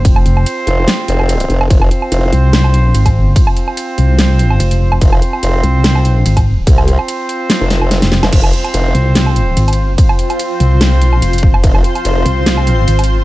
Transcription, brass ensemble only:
X:1
M:4/4
L:1/8
Q:"Swing 16ths" 1/4=145
K:Fm
V:1 name="Brass ensemble"
[CFc]8 | [CFc]8 | [CFc]8 | [CFc]8 |
[CFc]8 | [CFc]8 | [CFc]8 | [CFc]8 |]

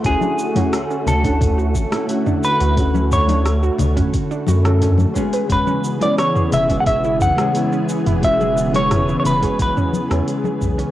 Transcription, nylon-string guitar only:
X:1
M:4/4
L:1/16
Q:1/4=88
K:Emix
V:1 name="Nylon-string guitar"
[A,CEF]3 [A,CEF] z3 [A,CEF]3 z [A,CEA] [A,CEF]4 | [A,CEF]3 [A,CEF] z3 [A,CEF]3 z [A,CEA]3 [G,B,CG]2 | [G,B,CF]3 [G,B,CF] z3 [G,B,CF]3 z [G,B,CG] [G,B,CE]4 | [G,B,CF]3 [G,B,CF] z3 [G,B,CF]3 z [G,B,CG] [G,B,CE]4 |]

